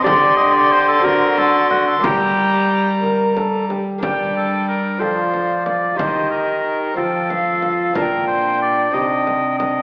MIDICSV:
0, 0, Header, 1, 7, 480
1, 0, Start_track
1, 0, Key_signature, -2, "minor"
1, 0, Tempo, 661521
1, 38, Time_signature, 6, 3, 24, 8
1, 2918, Key_signature, -2, "minor"
1, 3398, Tempo, 654308
1, 7166, End_track
2, 0, Start_track
2, 0, Title_t, "Recorder"
2, 0, Program_c, 0, 74
2, 42, Note_on_c, 0, 84, 69
2, 740, Note_off_c, 0, 84, 0
2, 770, Note_on_c, 0, 84, 65
2, 1484, Note_on_c, 0, 82, 80
2, 1495, Note_off_c, 0, 84, 0
2, 2689, Note_off_c, 0, 82, 0
2, 2921, Note_on_c, 0, 79, 58
2, 3644, Note_on_c, 0, 74, 44
2, 3655, Note_off_c, 0, 79, 0
2, 4350, Note_on_c, 0, 77, 44
2, 4361, Note_off_c, 0, 74, 0
2, 4376, Note_on_c, 0, 75, 48
2, 4384, Note_off_c, 0, 77, 0
2, 5085, Note_on_c, 0, 79, 48
2, 5096, Note_off_c, 0, 75, 0
2, 5317, Note_on_c, 0, 77, 59
2, 5328, Note_off_c, 0, 79, 0
2, 5559, Note_off_c, 0, 77, 0
2, 5571, Note_on_c, 0, 77, 51
2, 5801, Note_off_c, 0, 77, 0
2, 5809, Note_on_c, 0, 81, 53
2, 5845, Note_on_c, 0, 79, 58
2, 5853, Note_off_c, 0, 81, 0
2, 7166, Note_off_c, 0, 79, 0
2, 7166, End_track
3, 0, Start_track
3, 0, Title_t, "Oboe"
3, 0, Program_c, 1, 68
3, 27, Note_on_c, 1, 74, 109
3, 262, Note_off_c, 1, 74, 0
3, 266, Note_on_c, 1, 75, 98
3, 390, Note_on_c, 1, 74, 106
3, 401, Note_off_c, 1, 75, 0
3, 521, Note_on_c, 1, 72, 104
3, 532, Note_off_c, 1, 74, 0
3, 636, Note_off_c, 1, 72, 0
3, 640, Note_on_c, 1, 69, 90
3, 757, Note_on_c, 1, 70, 106
3, 768, Note_off_c, 1, 69, 0
3, 1004, Note_on_c, 1, 69, 96
3, 1015, Note_off_c, 1, 70, 0
3, 1231, Note_off_c, 1, 69, 0
3, 1235, Note_on_c, 1, 66, 88
3, 1351, Note_off_c, 1, 66, 0
3, 1357, Note_on_c, 1, 69, 79
3, 1481, Note_on_c, 1, 67, 96
3, 1492, Note_off_c, 1, 69, 0
3, 2199, Note_off_c, 1, 67, 0
3, 2927, Note_on_c, 1, 67, 70
3, 3146, Note_off_c, 1, 67, 0
3, 3171, Note_on_c, 1, 69, 66
3, 3394, Note_off_c, 1, 69, 0
3, 3399, Note_on_c, 1, 70, 71
3, 3631, Note_on_c, 1, 72, 76
3, 3642, Note_off_c, 1, 70, 0
3, 4108, Note_off_c, 1, 72, 0
3, 4112, Note_on_c, 1, 74, 68
3, 4338, Note_on_c, 1, 72, 75
3, 4349, Note_off_c, 1, 74, 0
3, 4584, Note_off_c, 1, 72, 0
3, 4589, Note_on_c, 1, 70, 73
3, 5064, Note_off_c, 1, 70, 0
3, 5076, Note_on_c, 1, 69, 73
3, 5785, Note_off_c, 1, 69, 0
3, 5798, Note_on_c, 1, 70, 70
3, 6028, Note_off_c, 1, 70, 0
3, 6032, Note_on_c, 1, 72, 73
3, 6271, Note_off_c, 1, 72, 0
3, 6286, Note_on_c, 1, 74, 86
3, 6522, Note_on_c, 1, 75, 84
3, 6533, Note_off_c, 1, 74, 0
3, 6988, Note_off_c, 1, 75, 0
3, 6993, Note_on_c, 1, 75, 81
3, 7166, Note_off_c, 1, 75, 0
3, 7166, End_track
4, 0, Start_track
4, 0, Title_t, "Trombone"
4, 0, Program_c, 2, 57
4, 37, Note_on_c, 2, 67, 78
4, 737, Note_off_c, 2, 67, 0
4, 754, Note_on_c, 2, 66, 78
4, 1459, Note_off_c, 2, 66, 0
4, 1470, Note_on_c, 2, 67, 63
4, 2132, Note_off_c, 2, 67, 0
4, 2190, Note_on_c, 2, 70, 78
4, 2416, Note_off_c, 2, 70, 0
4, 2439, Note_on_c, 2, 69, 69
4, 2672, Note_off_c, 2, 69, 0
4, 2676, Note_on_c, 2, 67, 55
4, 2913, Note_off_c, 2, 67, 0
4, 2918, Note_on_c, 2, 62, 50
4, 3512, Note_off_c, 2, 62, 0
4, 3637, Note_on_c, 2, 65, 48
4, 4344, Note_off_c, 2, 65, 0
4, 4354, Note_on_c, 2, 67, 55
4, 5077, Note_on_c, 2, 65, 53
4, 5088, Note_off_c, 2, 67, 0
4, 5800, Note_on_c, 2, 62, 56
4, 5811, Note_off_c, 2, 65, 0
4, 7166, Note_off_c, 2, 62, 0
4, 7166, End_track
5, 0, Start_track
5, 0, Title_t, "Lute"
5, 0, Program_c, 3, 24
5, 9, Note_on_c, 3, 60, 56
5, 15, Note_on_c, 3, 62, 58
5, 28, Note_on_c, 3, 67, 57
5, 37, Note_on_c, 3, 50, 64
5, 712, Note_off_c, 3, 60, 0
5, 719, Note_off_c, 3, 62, 0
5, 721, Note_on_c, 3, 60, 49
5, 726, Note_off_c, 3, 67, 0
5, 727, Note_on_c, 3, 62, 47
5, 737, Note_on_c, 3, 66, 46
5, 1434, Note_off_c, 3, 60, 0
5, 1438, Note_off_c, 3, 62, 0
5, 1443, Note_off_c, 3, 50, 0
5, 1443, Note_off_c, 3, 66, 0
5, 1446, Note_on_c, 3, 58, 44
5, 1453, Note_on_c, 3, 62, 50
5, 1463, Note_on_c, 3, 67, 50
5, 1470, Note_on_c, 3, 55, 56
5, 2742, Note_off_c, 3, 55, 0
5, 2876, Note_off_c, 3, 58, 0
5, 2880, Note_off_c, 3, 62, 0
5, 2885, Note_off_c, 3, 67, 0
5, 2889, Note_on_c, 3, 58, 42
5, 2896, Note_on_c, 3, 62, 39
5, 2906, Note_on_c, 3, 67, 40
5, 2918, Note_on_c, 3, 55, 44
5, 3601, Note_off_c, 3, 58, 0
5, 3605, Note_off_c, 3, 62, 0
5, 3609, Note_off_c, 3, 55, 0
5, 3610, Note_off_c, 3, 67, 0
5, 3612, Note_on_c, 3, 60, 33
5, 3619, Note_on_c, 3, 65, 38
5, 3631, Note_on_c, 3, 69, 38
5, 3639, Note_on_c, 3, 53, 41
5, 4324, Note_off_c, 3, 60, 0
5, 4325, Note_off_c, 3, 65, 0
5, 4328, Note_on_c, 3, 63, 37
5, 4330, Note_off_c, 3, 53, 0
5, 4334, Note_off_c, 3, 69, 0
5, 4339, Note_on_c, 3, 67, 40
5, 4354, Note_on_c, 3, 51, 45
5, 5041, Note_off_c, 3, 63, 0
5, 5047, Note_off_c, 3, 51, 0
5, 5047, Note_off_c, 3, 67, 0
5, 5056, Note_on_c, 3, 60, 37
5, 5066, Note_on_c, 3, 65, 36
5, 5074, Note_on_c, 3, 72, 34
5, 5084, Note_on_c, 3, 53, 37
5, 5767, Note_off_c, 3, 60, 0
5, 5773, Note_off_c, 3, 65, 0
5, 5774, Note_off_c, 3, 53, 0
5, 5776, Note_off_c, 3, 72, 0
5, 5784, Note_on_c, 3, 62, 37
5, 5790, Note_on_c, 3, 65, 39
5, 5801, Note_on_c, 3, 70, 43
5, 5810, Note_on_c, 3, 46, 42
5, 6489, Note_off_c, 3, 62, 0
5, 6493, Note_off_c, 3, 65, 0
5, 6495, Note_off_c, 3, 46, 0
5, 6498, Note_off_c, 3, 70, 0
5, 6499, Note_on_c, 3, 60, 41
5, 6508, Note_on_c, 3, 63, 36
5, 6520, Note_on_c, 3, 67, 35
5, 6527, Note_on_c, 3, 48, 46
5, 7166, Note_off_c, 3, 48, 0
5, 7166, Note_off_c, 3, 60, 0
5, 7166, Note_off_c, 3, 63, 0
5, 7166, Note_off_c, 3, 67, 0
5, 7166, End_track
6, 0, Start_track
6, 0, Title_t, "Cello"
6, 0, Program_c, 4, 42
6, 37, Note_on_c, 4, 50, 83
6, 1443, Note_off_c, 4, 50, 0
6, 1471, Note_on_c, 4, 55, 62
6, 2745, Note_off_c, 4, 55, 0
6, 2917, Note_on_c, 4, 55, 55
6, 3640, Note_on_c, 4, 53, 44
6, 3651, Note_off_c, 4, 55, 0
6, 4357, Note_off_c, 4, 53, 0
6, 4361, Note_on_c, 4, 51, 50
6, 5066, Note_off_c, 4, 51, 0
6, 5081, Note_on_c, 4, 53, 48
6, 5798, Note_on_c, 4, 46, 58
6, 5809, Note_off_c, 4, 53, 0
6, 6516, Note_off_c, 4, 46, 0
6, 6521, Note_on_c, 4, 48, 45
6, 7166, Note_off_c, 4, 48, 0
6, 7166, End_track
7, 0, Start_track
7, 0, Title_t, "Frame drum"
7, 46, Note_on_c, 9, 64, 88
7, 119, Note_off_c, 9, 64, 0
7, 761, Note_on_c, 9, 64, 52
7, 834, Note_off_c, 9, 64, 0
7, 997, Note_on_c, 9, 64, 54
7, 1069, Note_off_c, 9, 64, 0
7, 1237, Note_on_c, 9, 64, 55
7, 1309, Note_off_c, 9, 64, 0
7, 1479, Note_on_c, 9, 64, 93
7, 1551, Note_off_c, 9, 64, 0
7, 2200, Note_on_c, 9, 64, 44
7, 2272, Note_off_c, 9, 64, 0
7, 2443, Note_on_c, 9, 64, 52
7, 2516, Note_off_c, 9, 64, 0
7, 2686, Note_on_c, 9, 64, 45
7, 2759, Note_off_c, 9, 64, 0
7, 2921, Note_on_c, 9, 64, 81
7, 2994, Note_off_c, 9, 64, 0
7, 3644, Note_on_c, 9, 64, 40
7, 3717, Note_off_c, 9, 64, 0
7, 3878, Note_on_c, 9, 64, 42
7, 3951, Note_off_c, 9, 64, 0
7, 4116, Note_on_c, 9, 64, 48
7, 4189, Note_off_c, 9, 64, 0
7, 4358, Note_on_c, 9, 64, 80
7, 4431, Note_off_c, 9, 64, 0
7, 5073, Note_on_c, 9, 64, 48
7, 5146, Note_off_c, 9, 64, 0
7, 5320, Note_on_c, 9, 64, 46
7, 5393, Note_off_c, 9, 64, 0
7, 5556, Note_on_c, 9, 64, 47
7, 5630, Note_off_c, 9, 64, 0
7, 5797, Note_on_c, 9, 64, 77
7, 5871, Note_off_c, 9, 64, 0
7, 6521, Note_on_c, 9, 64, 42
7, 6594, Note_off_c, 9, 64, 0
7, 6764, Note_on_c, 9, 64, 44
7, 6838, Note_off_c, 9, 64, 0
7, 7005, Note_on_c, 9, 64, 52
7, 7078, Note_off_c, 9, 64, 0
7, 7166, End_track
0, 0, End_of_file